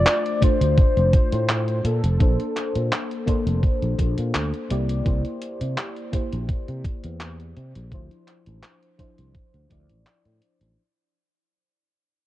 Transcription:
Already playing: A3 D4 F4 C5 D5
0.06 clap, closed hi-hat
0.26 closed hi-hat
0.40 A3 D4 F4 C5, kick, closed hi-hat
0.61 D2, closed hi-hat
0.78 kick, closed hi-hat
0.97 F1, closed hi-hat
1.13 kick, closed hi-hat
1.32 A2, closed hi-hat
1.49 clap, closed hi-hat
1.68 closed hi-hat
1.85 A#2 A4, closed hi-hat
2.04 F1, closed hi-hat
2.19 A#1 A#3 D4 A4 C5, kick, closed hi-hat
2.40 closed hi-hat
2.57 clap, closed hi-hat
2.75 A#2, closed hi-hat
2.92 clap, closed hi-hat
3.11 closed hi-hat
3.26 A#3 D4 A4 C5, kick, closed hi-hat
3.47 F1, closed hi-hat
3.63 kick, closed hi-hat
3.82 A#1, closed hi-hat
3.99 A#1, kick, closed hi-hat
4.18 A#2, closed hi-hat
4.35 D2, clap, closed hi-hat
4.54 closed hi-hat
4.70 C2 A#3 E4 G4 D5, closed hi-hat
4.89 closed hi-hat
5.05 C2 A#3 E4 G4 C5, kick, closed hi-hat
5.25 closed hi-hat
5.42 closed hi-hat
5.61 C3, closed hi-hat
5.78 clap, closed hi-hat
5.96 closed hi-hat
6.12 A#3 E4 G4 C5, kick, closed hi-hat
6.32 A#1, closed hi-hat
6.49 muted fretless electric bass stroke, kick, closed hi-hat
6.68 C3, closed hi-hat
6.84 kick, closed hi-hat
7.04 E2, closed hi-hat
7.20 clap, closed hi-hat
7.40 closed hi-hat
7.56 C3, closed hi-hat
7.75 A#1, closed hi-hat
7.91 D2 F3 D4 E4 C5, kick, closed hi-hat
8.11 closed hi-hat
8.28 clap, closed hi-hat
8.46 A1, closed hi-hat
8.63 clap, closed hi-hat
8.83 closed hi-hat
8.98 F3 D4 E4 C5, kick, closed hi-hat
9.18 C2, closed hi-hat
9.35 kick, closed hi-hat
9.54 D2, closed hi-hat
9.69 D2 F3 D4 E4 D5, kick, closed hi-hat
9.89 A1, closed hi-hat
10.06 clap, closed hi-hat
10.25 A2, closed hi-hat
10.42 closed hi-hat
10.61 A1, closed hi-hat

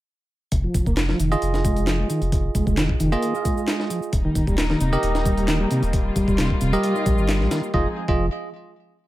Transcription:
0.52 F1, kick, closed hi-hat, shaker
0.64 F3
0.74 F1, kick, closed hi-hat, shaker
0.86 F1 A#3, kick, shaker
0.97 snare, clap, closed hi-hat, shaker
1.09 F3, snare
1.20 F1 D#3, closed hi-hat, shaker
1.32 D#3 F4 G#4 D#5, shaker
1.42 F1, closed hi-hat, shaker
1.54 snare, shaker
1.65 G#3, kick, closed hi-hat, shaker
1.76 closed hi-hat, shaker
1.87 F3, snare, clap, closed hi-hat, shaker
1.99 G#3
2.10 D#3, closed hi-hat, shaker
2.22 F1, closed hi-hat, shaker
2.32 kick, closed hi-hat, shaker
2.55 F1 G#3, kick, closed hi-hat, shaker
2.67 F1 G#3, kick, shaker
2.77 D#3, snare, clap, closed hi-hat, shaker
2.89 kick
3.00 F1 D#3, closed hi-hat, shaker
3.12 A#3 F4 G#4 D#5, shaker
3.22 closed hi-hat, shaker
3.35 F4, shaker
3.45 G#3, kick, closed hi-hat, shaker
3.57 shaker
3.68 snare, clap, closed hi-hat, shaker
3.80 snare
3.90 F3, closed hi-hat, shaker
4.02 shaker
4.13 D#1 G3 A#3 D#4, kick, closed hi-hat, shaker
4.25 D#3
4.35 D#1, kick, closed hi-hat, shaker
4.47 D#1 G3, kick, shaker
4.58 snare, clap, closed hi-hat, shaker
4.70 D#3, snare
4.80 D#1 C3, closed hi-hat, shaker
4.93 C3 G4 A#4 D#5, shaker
5.03 D#1, closed hi-hat, shaker
5.15 snare, shaker
5.25 G3, kick, closed hi-hat, shaker
5.37 closed hi-hat, shaker
5.48 D#3, snare, clap, closed hi-hat, shaker
5.60 G3
5.71 C3, closed hi-hat, shaker
5.83 D#1, closed hi-hat, shaker
5.93 F4, kick, closed hi-hat, shaker
6.16 D#1 G3, kick, closed hi-hat, shaker
6.28 D#1 G3, kick, shaker
6.38 C3, snare, clap, closed hi-hat, shaker
6.50 kick
6.61 D#1 C3, closed hi-hat, shaker
6.73 G3 G4 A#4 D#5, shaker
6.83 closed hi-hat, shaker
6.95 D#4, shaker
7.06 A#1 G3, kick, closed hi-hat, shaker
7.18 G1, shaker
7.29 snare, clap, closed hi-hat, shaker
7.41 A#1, snare
7.51 D#3, snare, closed hi-hat, shaker
7.63 shaker
7.74 F1 F3 G#3 C4 D#4 F4 G#4 D#5, kick
8.08 F1 F3 F4 G#4 D#5, kick

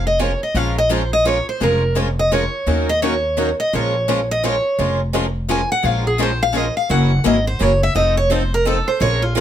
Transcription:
Already playing: F1
0.07 D#5
0.19 F3 G#3 C#4 F4 A#4 C#5
0.43 D#5
0.55 A#1 F3 G#3 C#4 F4 A#4 F5
0.78 D#5
0.89 F3 G#3 C#4 F4 A#4 C5
1.13 D#5
1.25 F3 G#3 C#4 F4 A#4 C#5
1.49 C5
1.60 F1 F3 G#3 C#4 F4 A#4
1.95 F3 G#3 C#4 F4 A#4
2.19 D#5
2.31 F3 G#3 C#4 F4 A#4 C#5
2.67 D#2 D#3 F#3 A#3 C#4 D#4 F#4 A#4
2.89 D#5
3.02 D#3 F#3 A#3 C#4 D#4 F#4 A#4 C#5
3.37 D#3 F#3 A#3 C#4 D#4 F#4 A#4
3.60 D#5
3.73 A#1 F3 G#3 C#4 F4 A#4 C#5
4.08 F3 G#3 C#4 F4 A#4
4.31 D#5
4.43 F3 G#3 C#4 F4 A#4 C#5
4.79 F1 F3 G#3 C#4 F4 A#4
5.14 F3 G#3 C#4 F4 A#4
5.49 F3 G#3 C#4 F4 A#4 G#5
5.72 F#5
5.83 A#1 F3 G#3 C#4 F4 A#4 F5
6.07 G#4
6.18 F3 G#3 C#4 F4 A#4
6.23 C5
6.43 F5
6.52 F3 G#3 C#4 F4 A#4
6.57 D#5
6.77 F5
6.89 F#1 C#3 E3 F#3 A#3 C#4 E4 F#4 A#4 F#5
7.24 G#1 C#3 E3 F#3 A#3 C#4 E4 F#4 A#4 D#5
7.47 C5
7.59 F#1 C#3 E3 F#3 A#3 C#4 E4 F#4 A#4 C#5
7.83 E5
7.95 F1 F3 C4 D#4 A4 D#5
8.17 C#5
8.31 F3 C4 D#4 A4 C5
8.54 A#4
8.66 F3 C4 D#4 A4
8.88 C5
9.01 A#1 F3 G#3 C#4 F4 A#4 C#5
9.22 F4
9.35 F3 G#3 C#4 F4 G#4 A#4

